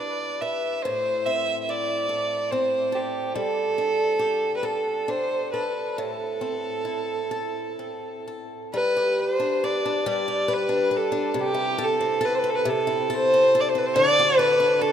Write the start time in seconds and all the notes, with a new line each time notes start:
Already playing: G3 D4 E4 B4 D5
0.41 B4 E5
0.82 A2 C5
1.26 C4 E5
1.61 E5
1.69 E4 D5
2.09 A4
2.51 C4 C5
2.92 G4 A4
3.35 G3 A4
3.78 D4
4.19 G4
4.57 B4
4.63 A4
5.08 D4 C5
5.52 A4 B4
5.87 B4
5.97 A2 A4
6.41 C4
6.85 E4
7.31 A4
7.79 C4
8.27 A4
8.74 G3 B4
8.97 G4
9.19 C5
9.40 D4
9.64 B4 D5
9.85 D4
10.06 G3 D5
10.28 G4
10.48 B4
10.53 B4
10.69 D4
10.91 B4
10.97 A4
11.12 D4
11.31 C3 A4
11.41 G4
11.54 E4
11.78 A4
11.83 A4
12.01 C4
12.21 A4
12.25 B4
12.35 B4 C5
12.44 C4
12.50 A4
12.55 B4
12.60 B4
12.65 C3
12.69 A4
12.87 E4
13.10 A4 C5
13.34 C4
13.55 A4
13.61 D5
13.69 C5
13.75 C4 B4
13.86 C5
13.95 D3 D5
14.19 F#4
14.37 A4 B4
14.60 D4
14.81 A4